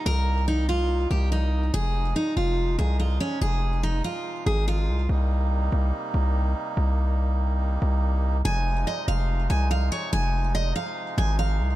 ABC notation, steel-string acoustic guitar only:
X:1
M:4/4
L:1/8
Q:1/4=143
K:Fm
V:1 name="Steel-string acoustic guitar"
B2 E F2 G E2 | A2 E F2 A F D | A2 E F2 A F2 | z8 |
z8 | a2 e f2 a f d | a2 e f2 a f2 |]